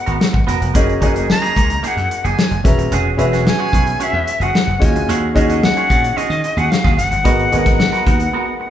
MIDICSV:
0, 0, Header, 1, 8, 480
1, 0, Start_track
1, 0, Tempo, 542986
1, 657, Time_signature, 4, 2, 24, 8
1, 7691, End_track
2, 0, Start_track
2, 0, Title_t, "Flute"
2, 0, Program_c, 0, 73
2, 0, Note_on_c, 0, 78, 105
2, 413, Note_off_c, 0, 78, 0
2, 1158, Note_on_c, 0, 82, 94
2, 1653, Note_on_c, 0, 78, 81
2, 1667, Note_off_c, 0, 82, 0
2, 2003, Note_on_c, 0, 80, 82
2, 2016, Note_off_c, 0, 78, 0
2, 2367, Note_on_c, 0, 82, 70
2, 2380, Note_off_c, 0, 80, 0
2, 2592, Note_off_c, 0, 82, 0
2, 3072, Note_on_c, 0, 80, 99
2, 3560, Note_on_c, 0, 76, 91
2, 3573, Note_off_c, 0, 80, 0
2, 3914, Note_on_c, 0, 78, 89
2, 3928, Note_off_c, 0, 76, 0
2, 4288, Note_on_c, 0, 80, 79
2, 4301, Note_off_c, 0, 78, 0
2, 4512, Note_off_c, 0, 80, 0
2, 4983, Note_on_c, 0, 78, 100
2, 5454, Note_on_c, 0, 75, 97
2, 5467, Note_off_c, 0, 78, 0
2, 5818, Note_on_c, 0, 78, 95
2, 5831, Note_off_c, 0, 75, 0
2, 5928, Note_on_c, 0, 77, 87
2, 5941, Note_off_c, 0, 78, 0
2, 6149, Note_off_c, 0, 77, 0
2, 6154, Note_on_c, 0, 78, 93
2, 7691, Note_off_c, 0, 78, 0
2, 7691, End_track
3, 0, Start_track
3, 0, Title_t, "Grand piano"
3, 0, Program_c, 1, 0
3, 0, Control_c, 1, 64, 127
3, 0, Note_on_c, 1, 59, 63
3, 0, Note_on_c, 1, 66, 56
3, 0, Note_on_c, 1, 68, 60
3, 0, Note_on_c, 1, 70, 61
3, 0, Note_on_c, 1, 75, 75
3, 665, Note_on_c, 1, 61, 79
3, 669, Note_off_c, 1, 75, 0
3, 669, Control_c, 1, 64, 0
3, 670, Note_off_c, 1, 66, 0
3, 670, Note_off_c, 1, 68, 0
3, 670, Note_on_c, 1, 66, 67
3, 670, Note_on_c, 1, 68, 68
3, 672, Note_off_c, 1, 59, 0
3, 674, Note_on_c, 1, 75, 84
3, 676, Note_off_c, 1, 70, 0
3, 676, Note_on_c, 1, 70, 66
3, 839, Control_c, 1, 64, 127
3, 858, Note_off_c, 1, 61, 0
3, 861, Note_off_c, 1, 66, 0
3, 861, Note_off_c, 1, 68, 0
3, 863, Note_off_c, 1, 75, 0
3, 864, Note_off_c, 1, 70, 0
3, 903, Note_on_c, 1, 66, 68
3, 904, Note_on_c, 1, 61, 70
3, 905, Note_on_c, 1, 68, 65
3, 908, Note_on_c, 1, 70, 67
3, 909, Note_on_c, 1, 75, 75
3, 1690, Note_off_c, 1, 66, 0
3, 1691, Note_off_c, 1, 61, 0
3, 1691, Note_off_c, 1, 68, 0
3, 1693, Note_off_c, 1, 70, 0
3, 1693, Note_off_c, 1, 75, 0
3, 2333, Note_on_c, 1, 61, 67
3, 2337, Note_on_c, 1, 66, 57
3, 2340, Note_on_c, 1, 68, 59
3, 2343, Note_on_c, 1, 71, 57
3, 2345, Note_on_c, 1, 76, 74
3, 2349, Control_c, 1, 64, 0
3, 2512, Control_c, 1, 64, 127
3, 2730, Note_off_c, 1, 61, 0
3, 2732, Note_off_c, 1, 66, 0
3, 2734, Note_off_c, 1, 68, 0
3, 2735, Note_off_c, 1, 71, 0
3, 2736, Note_off_c, 1, 76, 0
3, 2804, Note_on_c, 1, 61, 78
3, 2808, Note_on_c, 1, 66, 68
3, 2809, Note_on_c, 1, 68, 64
3, 2813, Note_on_c, 1, 71, 76
3, 2814, Note_on_c, 1, 76, 84
3, 3601, Note_off_c, 1, 61, 0
3, 3602, Note_off_c, 1, 66, 0
3, 3603, Note_off_c, 1, 68, 0
3, 3605, Note_off_c, 1, 71, 0
3, 3606, Note_off_c, 1, 76, 0
3, 4237, Note_on_c, 1, 61, 64
3, 4238, Note_on_c, 1, 66, 63
3, 4241, Note_on_c, 1, 65, 55
3, 4245, Note_on_c, 1, 68, 56
3, 4248, Note_on_c, 1, 75, 62
3, 4269, Control_c, 1, 64, 0
3, 4409, Control_c, 1, 64, 127
3, 4642, Note_off_c, 1, 61, 0
3, 4642, Note_off_c, 1, 66, 0
3, 4644, Note_off_c, 1, 65, 0
3, 4646, Note_off_c, 1, 68, 0
3, 4647, Note_off_c, 1, 75, 0
3, 4725, Note_on_c, 1, 61, 80
3, 4728, Note_on_c, 1, 63, 69
3, 4730, Note_on_c, 1, 68, 72
3, 4731, Note_on_c, 1, 66, 69
3, 4734, Note_on_c, 1, 75, 94
3, 5520, Note_off_c, 1, 61, 0
3, 5522, Note_off_c, 1, 63, 0
3, 5523, Note_off_c, 1, 68, 0
3, 5524, Note_off_c, 1, 66, 0
3, 5525, Note_off_c, 1, 75, 0
3, 6401, Note_on_c, 1, 59, 60
3, 6407, Note_on_c, 1, 66, 57
3, 6408, Note_on_c, 1, 68, 58
3, 6408, Note_on_c, 1, 70, 57
3, 6411, Note_on_c, 1, 75, 76
3, 6427, Control_c, 1, 64, 0
3, 6571, Control_c, 1, 64, 127
3, 6606, Note_off_c, 1, 59, 0
3, 6609, Note_off_c, 1, 66, 0
3, 6609, Note_off_c, 1, 68, 0
3, 6609, Note_off_c, 1, 70, 0
3, 6611, Note_off_c, 1, 75, 0
3, 6647, Note_on_c, 1, 59, 63
3, 6648, Note_on_c, 1, 66, 60
3, 6651, Note_on_c, 1, 68, 60
3, 6654, Note_on_c, 1, 70, 61
3, 6654, Note_on_c, 1, 75, 71
3, 7441, Note_off_c, 1, 59, 0
3, 7441, Note_off_c, 1, 66, 0
3, 7443, Note_off_c, 1, 68, 0
3, 7444, Note_off_c, 1, 70, 0
3, 7444, Note_off_c, 1, 75, 0
3, 7691, End_track
4, 0, Start_track
4, 0, Title_t, "Clean electric guitar"
4, 0, Program_c, 2, 27
4, 56, Note_on_c, 2, 70, 55
4, 65, Note_on_c, 2, 66, 57
4, 70, Note_on_c, 2, 59, 55
4, 168, Note_off_c, 2, 59, 0
4, 173, Note_off_c, 2, 66, 0
4, 174, Note_off_c, 2, 70, 0
4, 414, Note_on_c, 2, 59, 75
4, 421, Note_on_c, 2, 66, 82
4, 432, Note_on_c, 2, 70, 82
4, 523, Note_off_c, 2, 70, 0
4, 528, Note_off_c, 2, 66, 0
4, 533, Note_on_c, 2, 70, 50
4, 535, Note_off_c, 2, 59, 0
4, 539, Note_on_c, 2, 66, 50
4, 546, Note_on_c, 2, 59, 48
4, 650, Note_off_c, 2, 59, 0
4, 654, Note_on_c, 2, 58, 72
4, 657, Note_off_c, 2, 70, 0
4, 658, Note_off_c, 2, 66, 0
4, 662, Note_on_c, 2, 63, 81
4, 671, Note_on_c, 2, 68, 76
4, 811, Note_off_c, 2, 58, 0
4, 815, Note_off_c, 2, 63, 0
4, 819, Note_off_c, 2, 68, 0
4, 890, Note_on_c, 2, 58, 57
4, 900, Note_on_c, 2, 63, 60
4, 910, Note_on_c, 2, 68, 62
4, 1004, Note_off_c, 2, 68, 0
4, 1011, Note_off_c, 2, 63, 0
4, 1014, Note_on_c, 2, 68, 53
4, 1015, Note_off_c, 2, 58, 0
4, 1022, Note_on_c, 2, 63, 49
4, 1031, Note_on_c, 2, 58, 41
4, 1126, Note_off_c, 2, 58, 0
4, 1133, Note_off_c, 2, 63, 0
4, 1137, Note_off_c, 2, 68, 0
4, 1254, Note_on_c, 2, 68, 82
4, 1262, Note_on_c, 2, 63, 68
4, 1273, Note_on_c, 2, 58, 57
4, 1374, Note_off_c, 2, 58, 0
4, 1379, Note_off_c, 2, 63, 0
4, 1385, Note_on_c, 2, 58, 59
4, 1386, Note_off_c, 2, 68, 0
4, 1390, Note_on_c, 2, 63, 66
4, 1397, Note_on_c, 2, 68, 67
4, 1493, Note_off_c, 2, 68, 0
4, 1502, Note_off_c, 2, 63, 0
4, 1503, Note_off_c, 2, 58, 0
4, 1617, Note_on_c, 2, 58, 68
4, 1626, Note_on_c, 2, 63, 75
4, 1633, Note_on_c, 2, 68, 84
4, 1730, Note_off_c, 2, 68, 0
4, 1744, Note_off_c, 2, 63, 0
4, 1773, Note_off_c, 2, 58, 0
4, 1985, Note_on_c, 2, 68, 62
4, 1993, Note_on_c, 2, 63, 56
4, 1995, Note_on_c, 2, 58, 49
4, 2089, Note_off_c, 2, 58, 0
4, 2097, Note_off_c, 2, 63, 0
4, 2100, Note_off_c, 2, 68, 0
4, 2581, Note_on_c, 2, 61, 70
4, 2589, Note_on_c, 2, 66, 77
4, 2598, Note_on_c, 2, 68, 90
4, 2735, Note_off_c, 2, 61, 0
4, 2739, Note_off_c, 2, 66, 0
4, 2743, Note_off_c, 2, 68, 0
4, 2820, Note_on_c, 2, 61, 62
4, 2827, Note_on_c, 2, 66, 65
4, 2834, Note_on_c, 2, 68, 62
4, 2921, Note_off_c, 2, 68, 0
4, 2930, Note_off_c, 2, 66, 0
4, 2932, Note_on_c, 2, 68, 54
4, 2936, Note_off_c, 2, 61, 0
4, 2941, Note_on_c, 2, 66, 52
4, 2947, Note_on_c, 2, 61, 45
4, 3042, Note_off_c, 2, 61, 0
4, 3047, Note_off_c, 2, 66, 0
4, 3050, Note_off_c, 2, 68, 0
4, 3172, Note_on_c, 2, 68, 74
4, 3178, Note_on_c, 2, 66, 67
4, 3185, Note_on_c, 2, 61, 56
4, 3276, Note_off_c, 2, 61, 0
4, 3287, Note_on_c, 2, 61, 57
4, 3288, Note_off_c, 2, 66, 0
4, 3294, Note_off_c, 2, 68, 0
4, 3299, Note_on_c, 2, 66, 53
4, 3305, Note_on_c, 2, 68, 60
4, 3410, Note_off_c, 2, 68, 0
4, 3414, Note_off_c, 2, 61, 0
4, 3420, Note_off_c, 2, 66, 0
4, 3534, Note_on_c, 2, 61, 74
4, 3541, Note_on_c, 2, 66, 73
4, 3551, Note_on_c, 2, 68, 79
4, 3650, Note_off_c, 2, 68, 0
4, 3660, Note_off_c, 2, 66, 0
4, 3691, Note_off_c, 2, 61, 0
4, 3905, Note_on_c, 2, 68, 61
4, 3909, Note_on_c, 2, 66, 54
4, 3919, Note_on_c, 2, 61, 51
4, 4018, Note_off_c, 2, 61, 0
4, 4023, Note_off_c, 2, 66, 0
4, 4023, Note_off_c, 2, 68, 0
4, 4499, Note_on_c, 2, 61, 76
4, 4505, Note_on_c, 2, 66, 85
4, 4511, Note_on_c, 2, 68, 88
4, 4654, Note_off_c, 2, 61, 0
4, 4657, Note_off_c, 2, 66, 0
4, 4660, Note_off_c, 2, 68, 0
4, 4740, Note_on_c, 2, 61, 50
4, 4747, Note_on_c, 2, 66, 50
4, 4753, Note_on_c, 2, 68, 59
4, 4847, Note_off_c, 2, 68, 0
4, 4856, Note_off_c, 2, 66, 0
4, 4857, Note_on_c, 2, 68, 53
4, 4860, Note_off_c, 2, 61, 0
4, 4867, Note_on_c, 2, 66, 55
4, 4874, Note_on_c, 2, 61, 44
4, 4975, Note_off_c, 2, 61, 0
4, 4979, Note_off_c, 2, 66, 0
4, 4979, Note_off_c, 2, 68, 0
4, 5100, Note_on_c, 2, 68, 80
4, 5109, Note_on_c, 2, 66, 69
4, 5112, Note_on_c, 2, 61, 66
4, 5211, Note_off_c, 2, 61, 0
4, 5218, Note_off_c, 2, 66, 0
4, 5221, Note_on_c, 2, 61, 53
4, 5228, Note_off_c, 2, 68, 0
4, 5229, Note_on_c, 2, 66, 61
4, 5238, Note_on_c, 2, 68, 71
4, 5329, Note_off_c, 2, 68, 0
4, 5339, Note_off_c, 2, 66, 0
4, 5341, Note_off_c, 2, 61, 0
4, 5454, Note_on_c, 2, 61, 81
4, 5465, Note_on_c, 2, 66, 80
4, 5470, Note_on_c, 2, 68, 86
4, 5567, Note_off_c, 2, 68, 0
4, 5577, Note_off_c, 2, 66, 0
4, 5611, Note_off_c, 2, 61, 0
4, 5812, Note_on_c, 2, 68, 59
4, 5820, Note_on_c, 2, 66, 57
4, 5829, Note_on_c, 2, 61, 52
4, 5923, Note_off_c, 2, 61, 0
4, 5929, Note_off_c, 2, 66, 0
4, 5931, Note_off_c, 2, 68, 0
4, 6049, Note_on_c, 2, 68, 66
4, 6058, Note_on_c, 2, 66, 59
4, 6062, Note_on_c, 2, 61, 52
4, 6152, Note_off_c, 2, 61, 0
4, 6160, Note_off_c, 2, 66, 0
4, 6164, Note_off_c, 2, 68, 0
4, 6406, Note_on_c, 2, 59, 81
4, 6411, Note_on_c, 2, 66, 83
4, 6420, Note_on_c, 2, 70, 78
4, 6566, Note_off_c, 2, 59, 0
4, 6569, Note_off_c, 2, 66, 0
4, 6574, Note_off_c, 2, 70, 0
4, 6645, Note_on_c, 2, 59, 55
4, 6655, Note_on_c, 2, 66, 58
4, 6659, Note_on_c, 2, 70, 53
4, 6761, Note_off_c, 2, 70, 0
4, 6768, Note_off_c, 2, 66, 0
4, 6772, Note_off_c, 2, 59, 0
4, 6772, Note_on_c, 2, 70, 54
4, 6779, Note_on_c, 2, 66, 45
4, 6788, Note_on_c, 2, 59, 43
4, 6876, Note_off_c, 2, 59, 0
4, 6882, Note_off_c, 2, 66, 0
4, 6889, Note_off_c, 2, 70, 0
4, 7006, Note_on_c, 2, 70, 69
4, 7010, Note_on_c, 2, 66, 60
4, 7019, Note_on_c, 2, 59, 54
4, 7116, Note_off_c, 2, 59, 0
4, 7126, Note_off_c, 2, 66, 0
4, 7127, Note_on_c, 2, 59, 53
4, 7131, Note_off_c, 2, 70, 0
4, 7137, Note_on_c, 2, 66, 65
4, 7141, Note_on_c, 2, 70, 66
4, 7232, Note_off_c, 2, 70, 0
4, 7243, Note_off_c, 2, 66, 0
4, 7253, Note_off_c, 2, 59, 0
4, 7366, Note_on_c, 2, 59, 66
4, 7374, Note_on_c, 2, 66, 77
4, 7379, Note_on_c, 2, 70, 77
4, 7469, Note_off_c, 2, 70, 0
4, 7481, Note_off_c, 2, 66, 0
4, 7526, Note_off_c, 2, 59, 0
4, 7691, End_track
5, 0, Start_track
5, 0, Title_t, "Slap bass"
5, 0, Program_c, 3, 36
5, 63, Note_on_c, 3, 32, 73
5, 150, Note_off_c, 3, 32, 0
5, 300, Note_on_c, 3, 32, 74
5, 389, Note_off_c, 3, 32, 0
5, 421, Note_on_c, 3, 28, 69
5, 509, Note_off_c, 3, 28, 0
5, 542, Note_on_c, 3, 29, 79
5, 630, Note_off_c, 3, 29, 0
5, 662, Note_on_c, 3, 30, 91
5, 840, Note_off_c, 3, 30, 0
5, 900, Note_on_c, 3, 30, 82
5, 1169, Note_off_c, 3, 30, 0
5, 1383, Note_on_c, 3, 37, 82
5, 1561, Note_off_c, 3, 37, 0
5, 1739, Note_on_c, 3, 42, 77
5, 1828, Note_off_c, 3, 42, 0
5, 1983, Note_on_c, 3, 30, 78
5, 2071, Note_off_c, 3, 30, 0
5, 2219, Note_on_c, 3, 30, 81
5, 2308, Note_off_c, 3, 30, 0
5, 2341, Note_on_c, 3, 28, 79
5, 2429, Note_off_c, 3, 28, 0
5, 2456, Note_on_c, 3, 27, 79
5, 2547, Note_off_c, 3, 27, 0
5, 2579, Note_on_c, 3, 28, 94
5, 2759, Note_off_c, 3, 28, 0
5, 2813, Note_on_c, 3, 28, 79
5, 3085, Note_off_c, 3, 28, 0
5, 3300, Note_on_c, 3, 35, 83
5, 3479, Note_off_c, 3, 35, 0
5, 3652, Note_on_c, 3, 40, 90
5, 3744, Note_off_c, 3, 40, 0
5, 3887, Note_on_c, 3, 30, 83
5, 3981, Note_off_c, 3, 30, 0
5, 4130, Note_on_c, 3, 30, 88
5, 4223, Note_off_c, 3, 30, 0
5, 4256, Note_on_c, 3, 39, 89
5, 4383, Note_off_c, 3, 39, 0
5, 4383, Note_on_c, 3, 38, 67
5, 4471, Note_off_c, 3, 38, 0
5, 4495, Note_on_c, 3, 39, 82
5, 4676, Note_off_c, 3, 39, 0
5, 4734, Note_on_c, 3, 39, 82
5, 5005, Note_off_c, 3, 39, 0
5, 5218, Note_on_c, 3, 46, 81
5, 5397, Note_off_c, 3, 46, 0
5, 5568, Note_on_c, 3, 51, 83
5, 5661, Note_off_c, 3, 51, 0
5, 5804, Note_on_c, 3, 39, 82
5, 5899, Note_off_c, 3, 39, 0
5, 6054, Note_on_c, 3, 39, 73
5, 6145, Note_off_c, 3, 39, 0
5, 6167, Note_on_c, 3, 30, 84
5, 6261, Note_off_c, 3, 30, 0
5, 6296, Note_on_c, 3, 31, 69
5, 6386, Note_off_c, 3, 31, 0
5, 6408, Note_on_c, 3, 32, 96
5, 6591, Note_off_c, 3, 32, 0
5, 6658, Note_on_c, 3, 32, 87
5, 6927, Note_off_c, 3, 32, 0
5, 7128, Note_on_c, 3, 39, 76
5, 7311, Note_off_c, 3, 39, 0
5, 7691, End_track
6, 0, Start_track
6, 0, Title_t, "Muted clean electric guitar strokes"
6, 178, Note_on_c, 9, 29, 41
6, 267, Note_off_c, 9, 29, 0
6, 294, Note_on_c, 9, 29, 34
6, 382, Note_off_c, 9, 29, 0
6, 1137, Note_on_c, 9, 29, 41
6, 1225, Note_off_c, 9, 29, 0
6, 1504, Note_on_c, 9, 29, 46
6, 1592, Note_off_c, 9, 29, 0
6, 1741, Note_on_c, 9, 29, 33
6, 1829, Note_off_c, 9, 29, 0
6, 1860, Note_on_c, 9, 29, 39
6, 1949, Note_off_c, 9, 29, 0
6, 2100, Note_on_c, 9, 29, 41
6, 2188, Note_off_c, 9, 29, 0
6, 2223, Note_on_c, 9, 29, 38
6, 2311, Note_off_c, 9, 29, 0
6, 2465, Note_on_c, 9, 29, 38
6, 2553, Note_off_c, 9, 29, 0
6, 3052, Note_on_c, 9, 29, 33
6, 3141, Note_off_c, 9, 29, 0
6, 3421, Note_on_c, 9, 29, 40
6, 3509, Note_off_c, 9, 29, 0
6, 3660, Note_on_c, 9, 29, 42
6, 3749, Note_off_c, 9, 29, 0
6, 3785, Note_on_c, 9, 29, 36
6, 3873, Note_off_c, 9, 29, 0
6, 4028, Note_on_c, 9, 29, 34
6, 4117, Note_off_c, 9, 29, 0
6, 4151, Note_on_c, 9, 29, 39
6, 4240, Note_off_c, 9, 29, 0
6, 4386, Note_on_c, 9, 29, 35
6, 4475, Note_off_c, 9, 29, 0
6, 4985, Note_on_c, 9, 29, 38
6, 5074, Note_off_c, 9, 29, 0
6, 5340, Note_on_c, 9, 29, 45
6, 5428, Note_off_c, 9, 29, 0
6, 5578, Note_on_c, 9, 29, 40
6, 5666, Note_off_c, 9, 29, 0
6, 5700, Note_on_c, 9, 29, 47
6, 5788, Note_off_c, 9, 29, 0
6, 5934, Note_on_c, 9, 29, 38
6, 6022, Note_off_c, 9, 29, 0
6, 6162, Note_on_c, 9, 29, 34
6, 6251, Note_off_c, 9, 29, 0
6, 6289, Note_on_c, 9, 29, 41
6, 6377, Note_off_c, 9, 29, 0
6, 6887, Note_on_c, 9, 29, 41
6, 6975, Note_off_c, 9, 29, 0
6, 7242, Note_on_c, 9, 29, 39
6, 7331, Note_off_c, 9, 29, 0
6, 7479, Note_on_c, 9, 29, 43
6, 7568, Note_off_c, 9, 29, 0
6, 7601, Note_on_c, 9, 29, 39
6, 7689, Note_off_c, 9, 29, 0
6, 7691, End_track
7, 0, Start_track
7, 0, Title_t, "Muted slap bass strokes"
7, 1626, Note_on_c, 9, 29, 39
7, 1714, Note_off_c, 9, 29, 0
7, 3533, Note_on_c, 9, 29, 36
7, 3621, Note_off_c, 9, 29, 0
7, 5455, Note_on_c, 9, 29, 44
7, 5543, Note_off_c, 9, 29, 0
7, 7691, End_track
8, 0, Start_track
8, 0, Title_t, "Drums"
8, 59, Note_on_c, 9, 42, 39
8, 147, Note_off_c, 9, 42, 0
8, 187, Note_on_c, 9, 38, 106
8, 276, Note_off_c, 9, 38, 0
8, 300, Note_on_c, 9, 36, 80
8, 389, Note_off_c, 9, 36, 0
8, 428, Note_on_c, 9, 42, 61
8, 430, Note_on_c, 9, 38, 28
8, 517, Note_off_c, 9, 42, 0
8, 519, Note_off_c, 9, 38, 0
8, 549, Note_on_c, 9, 42, 49
8, 637, Note_off_c, 9, 42, 0
8, 663, Note_on_c, 9, 36, 96
8, 663, Note_on_c, 9, 42, 80
8, 751, Note_off_c, 9, 36, 0
8, 752, Note_off_c, 9, 42, 0
8, 790, Note_on_c, 9, 42, 27
8, 879, Note_off_c, 9, 42, 0
8, 900, Note_on_c, 9, 36, 73
8, 902, Note_on_c, 9, 42, 67
8, 988, Note_off_c, 9, 36, 0
8, 990, Note_off_c, 9, 42, 0
8, 1024, Note_on_c, 9, 42, 45
8, 1112, Note_off_c, 9, 42, 0
8, 1147, Note_on_c, 9, 38, 95
8, 1236, Note_off_c, 9, 38, 0
8, 1269, Note_on_c, 9, 42, 32
8, 1270, Note_on_c, 9, 38, 26
8, 1358, Note_off_c, 9, 42, 0
8, 1359, Note_off_c, 9, 38, 0
8, 1383, Note_on_c, 9, 36, 72
8, 1391, Note_on_c, 9, 42, 56
8, 1471, Note_off_c, 9, 36, 0
8, 1479, Note_off_c, 9, 42, 0
8, 1503, Note_on_c, 9, 42, 43
8, 1591, Note_off_c, 9, 42, 0
8, 1625, Note_on_c, 9, 42, 75
8, 1713, Note_off_c, 9, 42, 0
8, 1747, Note_on_c, 9, 42, 32
8, 1835, Note_off_c, 9, 42, 0
8, 1868, Note_on_c, 9, 42, 64
8, 1956, Note_off_c, 9, 42, 0
8, 1989, Note_on_c, 9, 42, 36
8, 2077, Note_off_c, 9, 42, 0
8, 2110, Note_on_c, 9, 38, 98
8, 2198, Note_off_c, 9, 38, 0
8, 2227, Note_on_c, 9, 42, 29
8, 2315, Note_off_c, 9, 42, 0
8, 2342, Note_on_c, 9, 36, 96
8, 2349, Note_on_c, 9, 42, 62
8, 2351, Note_on_c, 9, 38, 28
8, 2430, Note_off_c, 9, 36, 0
8, 2437, Note_off_c, 9, 42, 0
8, 2439, Note_off_c, 9, 38, 0
8, 2464, Note_on_c, 9, 42, 46
8, 2553, Note_off_c, 9, 42, 0
8, 2581, Note_on_c, 9, 42, 76
8, 2669, Note_off_c, 9, 42, 0
8, 2819, Note_on_c, 9, 42, 58
8, 2907, Note_off_c, 9, 42, 0
8, 2946, Note_on_c, 9, 42, 45
8, 2948, Note_on_c, 9, 38, 32
8, 3034, Note_off_c, 9, 42, 0
8, 3037, Note_off_c, 9, 38, 0
8, 3065, Note_on_c, 9, 38, 102
8, 3153, Note_off_c, 9, 38, 0
8, 3298, Note_on_c, 9, 36, 81
8, 3307, Note_on_c, 9, 42, 46
8, 3387, Note_off_c, 9, 36, 0
8, 3395, Note_off_c, 9, 42, 0
8, 3419, Note_on_c, 9, 42, 43
8, 3508, Note_off_c, 9, 42, 0
8, 3540, Note_on_c, 9, 42, 71
8, 3628, Note_off_c, 9, 42, 0
8, 3780, Note_on_c, 9, 42, 62
8, 3868, Note_off_c, 9, 42, 0
8, 3900, Note_on_c, 9, 42, 36
8, 3988, Note_off_c, 9, 42, 0
8, 4024, Note_on_c, 9, 38, 99
8, 4112, Note_off_c, 9, 38, 0
8, 4258, Note_on_c, 9, 36, 96
8, 4265, Note_on_c, 9, 42, 57
8, 4267, Note_on_c, 9, 38, 29
8, 4346, Note_off_c, 9, 36, 0
8, 4353, Note_off_c, 9, 42, 0
8, 4355, Note_off_c, 9, 38, 0
8, 4384, Note_on_c, 9, 42, 47
8, 4472, Note_off_c, 9, 42, 0
8, 4503, Note_on_c, 9, 42, 77
8, 4592, Note_off_c, 9, 42, 0
8, 4735, Note_on_c, 9, 36, 74
8, 4744, Note_on_c, 9, 42, 67
8, 4824, Note_off_c, 9, 36, 0
8, 4832, Note_off_c, 9, 42, 0
8, 4859, Note_on_c, 9, 42, 49
8, 4948, Note_off_c, 9, 42, 0
8, 4980, Note_on_c, 9, 38, 108
8, 5069, Note_off_c, 9, 38, 0
8, 5102, Note_on_c, 9, 42, 29
8, 5190, Note_off_c, 9, 42, 0
8, 5217, Note_on_c, 9, 36, 78
8, 5228, Note_on_c, 9, 42, 56
8, 5305, Note_off_c, 9, 36, 0
8, 5316, Note_off_c, 9, 42, 0
8, 5342, Note_on_c, 9, 42, 45
8, 5430, Note_off_c, 9, 42, 0
8, 5461, Note_on_c, 9, 42, 68
8, 5550, Note_off_c, 9, 42, 0
8, 5583, Note_on_c, 9, 42, 32
8, 5671, Note_off_c, 9, 42, 0
8, 5693, Note_on_c, 9, 42, 63
8, 5781, Note_off_c, 9, 42, 0
8, 5816, Note_on_c, 9, 42, 37
8, 5904, Note_off_c, 9, 42, 0
8, 5940, Note_on_c, 9, 38, 90
8, 6028, Note_off_c, 9, 38, 0
8, 6051, Note_on_c, 9, 36, 74
8, 6056, Note_on_c, 9, 38, 31
8, 6140, Note_off_c, 9, 36, 0
8, 6144, Note_off_c, 9, 38, 0
8, 6178, Note_on_c, 9, 42, 62
8, 6180, Note_on_c, 9, 38, 28
8, 6266, Note_off_c, 9, 42, 0
8, 6268, Note_off_c, 9, 38, 0
8, 6292, Note_on_c, 9, 42, 49
8, 6380, Note_off_c, 9, 42, 0
8, 6410, Note_on_c, 9, 42, 74
8, 6411, Note_on_c, 9, 36, 87
8, 6499, Note_off_c, 9, 42, 0
8, 6500, Note_off_c, 9, 36, 0
8, 6537, Note_on_c, 9, 42, 27
8, 6626, Note_off_c, 9, 42, 0
8, 6652, Note_on_c, 9, 42, 61
8, 6740, Note_off_c, 9, 42, 0
8, 6772, Note_on_c, 9, 36, 84
8, 6772, Note_on_c, 9, 42, 45
8, 6775, Note_on_c, 9, 38, 33
8, 6860, Note_off_c, 9, 36, 0
8, 6861, Note_off_c, 9, 42, 0
8, 6863, Note_off_c, 9, 38, 0
8, 6894, Note_on_c, 9, 38, 101
8, 6983, Note_off_c, 9, 38, 0
8, 7016, Note_on_c, 9, 42, 30
8, 7017, Note_on_c, 9, 38, 29
8, 7104, Note_off_c, 9, 42, 0
8, 7105, Note_off_c, 9, 38, 0
8, 7130, Note_on_c, 9, 36, 83
8, 7136, Note_on_c, 9, 42, 47
8, 7218, Note_off_c, 9, 36, 0
8, 7224, Note_off_c, 9, 42, 0
8, 7248, Note_on_c, 9, 42, 47
8, 7336, Note_off_c, 9, 42, 0
8, 7691, End_track
0, 0, End_of_file